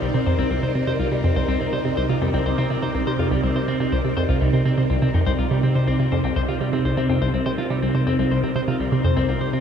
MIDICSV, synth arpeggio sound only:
0, 0, Header, 1, 2, 480
1, 0, Start_track
1, 0, Key_signature, -3, "minor"
1, 0, Tempo, 487805
1, 1341, Time_signature, 4, 2, 24, 8
1, 9449, End_track
2, 0, Start_track
2, 0, Title_t, "Synth arpeggio sound"
2, 0, Program_c, 0, 84
2, 20, Note_on_c, 0, 36, 77
2, 102, Note_off_c, 0, 36, 0
2, 141, Note_on_c, 0, 48, 75
2, 190, Note_off_c, 0, 48, 0
2, 261, Note_on_c, 0, 41, 99
2, 342, Note_off_c, 0, 41, 0
2, 380, Note_on_c, 0, 36, 98
2, 429, Note_off_c, 0, 36, 0
2, 501, Note_on_c, 0, 36, 77
2, 582, Note_off_c, 0, 36, 0
2, 621, Note_on_c, 0, 48, 76
2, 702, Note_off_c, 0, 48, 0
2, 741, Note_on_c, 0, 48, 78
2, 790, Note_off_c, 0, 48, 0
2, 861, Note_on_c, 0, 48, 85
2, 942, Note_off_c, 0, 48, 0
2, 981, Note_on_c, 0, 36, 75
2, 1062, Note_off_c, 0, 36, 0
2, 1101, Note_on_c, 0, 48, 77
2, 1150, Note_off_c, 0, 48, 0
2, 1221, Note_on_c, 0, 41, 99
2, 1302, Note_off_c, 0, 41, 0
2, 1342, Note_on_c, 0, 36, 98
2, 1390, Note_off_c, 0, 36, 0
2, 1460, Note_on_c, 0, 36, 79
2, 1542, Note_off_c, 0, 36, 0
2, 1581, Note_on_c, 0, 48, 77
2, 1662, Note_off_c, 0, 48, 0
2, 1701, Note_on_c, 0, 48, 76
2, 1750, Note_off_c, 0, 48, 0
2, 1820, Note_on_c, 0, 48, 81
2, 1902, Note_off_c, 0, 48, 0
2, 1942, Note_on_c, 0, 36, 78
2, 2023, Note_off_c, 0, 36, 0
2, 2061, Note_on_c, 0, 48, 75
2, 2110, Note_off_c, 0, 48, 0
2, 2183, Note_on_c, 0, 41, 104
2, 2263, Note_off_c, 0, 41, 0
2, 2302, Note_on_c, 0, 36, 101
2, 2350, Note_off_c, 0, 36, 0
2, 2422, Note_on_c, 0, 36, 79
2, 2503, Note_off_c, 0, 36, 0
2, 2543, Note_on_c, 0, 48, 78
2, 2623, Note_off_c, 0, 48, 0
2, 2662, Note_on_c, 0, 48, 77
2, 2710, Note_off_c, 0, 48, 0
2, 2782, Note_on_c, 0, 48, 82
2, 2863, Note_off_c, 0, 48, 0
2, 2902, Note_on_c, 0, 36, 79
2, 2983, Note_off_c, 0, 36, 0
2, 3022, Note_on_c, 0, 48, 78
2, 3070, Note_off_c, 0, 48, 0
2, 3141, Note_on_c, 0, 41, 99
2, 3222, Note_off_c, 0, 41, 0
2, 3261, Note_on_c, 0, 36, 97
2, 3310, Note_off_c, 0, 36, 0
2, 3380, Note_on_c, 0, 36, 74
2, 3462, Note_off_c, 0, 36, 0
2, 3500, Note_on_c, 0, 48, 80
2, 3582, Note_off_c, 0, 48, 0
2, 3621, Note_on_c, 0, 48, 74
2, 3670, Note_off_c, 0, 48, 0
2, 3741, Note_on_c, 0, 48, 80
2, 3822, Note_off_c, 0, 48, 0
2, 3861, Note_on_c, 0, 36, 76
2, 3942, Note_off_c, 0, 36, 0
2, 3981, Note_on_c, 0, 48, 77
2, 4030, Note_off_c, 0, 48, 0
2, 4102, Note_on_c, 0, 41, 102
2, 4183, Note_off_c, 0, 41, 0
2, 4221, Note_on_c, 0, 36, 98
2, 4270, Note_off_c, 0, 36, 0
2, 4342, Note_on_c, 0, 36, 78
2, 4422, Note_off_c, 0, 36, 0
2, 4461, Note_on_c, 0, 48, 77
2, 4542, Note_off_c, 0, 48, 0
2, 4582, Note_on_c, 0, 48, 75
2, 4630, Note_off_c, 0, 48, 0
2, 4702, Note_on_c, 0, 48, 85
2, 4783, Note_off_c, 0, 48, 0
2, 4822, Note_on_c, 0, 36, 76
2, 4903, Note_off_c, 0, 36, 0
2, 4943, Note_on_c, 0, 48, 77
2, 4991, Note_off_c, 0, 48, 0
2, 5062, Note_on_c, 0, 41, 100
2, 5143, Note_off_c, 0, 41, 0
2, 5182, Note_on_c, 0, 36, 98
2, 5230, Note_off_c, 0, 36, 0
2, 5302, Note_on_c, 0, 36, 76
2, 5383, Note_off_c, 0, 36, 0
2, 5422, Note_on_c, 0, 48, 81
2, 5503, Note_off_c, 0, 48, 0
2, 5544, Note_on_c, 0, 48, 74
2, 5591, Note_off_c, 0, 48, 0
2, 5664, Note_on_c, 0, 48, 78
2, 5744, Note_off_c, 0, 48, 0
2, 5783, Note_on_c, 0, 36, 77
2, 5863, Note_off_c, 0, 36, 0
2, 5902, Note_on_c, 0, 48, 77
2, 5950, Note_off_c, 0, 48, 0
2, 6022, Note_on_c, 0, 41, 104
2, 6103, Note_off_c, 0, 41, 0
2, 6143, Note_on_c, 0, 36, 102
2, 6191, Note_off_c, 0, 36, 0
2, 6263, Note_on_c, 0, 36, 79
2, 6343, Note_off_c, 0, 36, 0
2, 6384, Note_on_c, 0, 48, 76
2, 6463, Note_off_c, 0, 48, 0
2, 6504, Note_on_c, 0, 48, 75
2, 6551, Note_off_c, 0, 48, 0
2, 6624, Note_on_c, 0, 48, 87
2, 6703, Note_off_c, 0, 48, 0
2, 6744, Note_on_c, 0, 36, 77
2, 6824, Note_off_c, 0, 36, 0
2, 6863, Note_on_c, 0, 48, 77
2, 6911, Note_off_c, 0, 48, 0
2, 6982, Note_on_c, 0, 41, 101
2, 7062, Note_off_c, 0, 41, 0
2, 7102, Note_on_c, 0, 36, 97
2, 7150, Note_off_c, 0, 36, 0
2, 7223, Note_on_c, 0, 36, 77
2, 7303, Note_off_c, 0, 36, 0
2, 7343, Note_on_c, 0, 48, 79
2, 7423, Note_off_c, 0, 48, 0
2, 7463, Note_on_c, 0, 48, 77
2, 7511, Note_off_c, 0, 48, 0
2, 7582, Note_on_c, 0, 48, 82
2, 7663, Note_off_c, 0, 48, 0
2, 7701, Note_on_c, 0, 36, 78
2, 7782, Note_off_c, 0, 36, 0
2, 7820, Note_on_c, 0, 48, 80
2, 7869, Note_off_c, 0, 48, 0
2, 7940, Note_on_c, 0, 41, 100
2, 8022, Note_off_c, 0, 41, 0
2, 8060, Note_on_c, 0, 36, 100
2, 8109, Note_off_c, 0, 36, 0
2, 8181, Note_on_c, 0, 36, 80
2, 8262, Note_off_c, 0, 36, 0
2, 8301, Note_on_c, 0, 48, 79
2, 8382, Note_off_c, 0, 48, 0
2, 8420, Note_on_c, 0, 48, 75
2, 8469, Note_off_c, 0, 48, 0
2, 8541, Note_on_c, 0, 48, 85
2, 8622, Note_off_c, 0, 48, 0
2, 8659, Note_on_c, 0, 36, 77
2, 8741, Note_off_c, 0, 36, 0
2, 8780, Note_on_c, 0, 48, 78
2, 8829, Note_off_c, 0, 48, 0
2, 8900, Note_on_c, 0, 41, 100
2, 8982, Note_off_c, 0, 41, 0
2, 9020, Note_on_c, 0, 36, 101
2, 9069, Note_off_c, 0, 36, 0
2, 9140, Note_on_c, 0, 36, 79
2, 9222, Note_off_c, 0, 36, 0
2, 9260, Note_on_c, 0, 48, 80
2, 9342, Note_off_c, 0, 48, 0
2, 9381, Note_on_c, 0, 48, 78
2, 9430, Note_off_c, 0, 48, 0
2, 9449, End_track
0, 0, End_of_file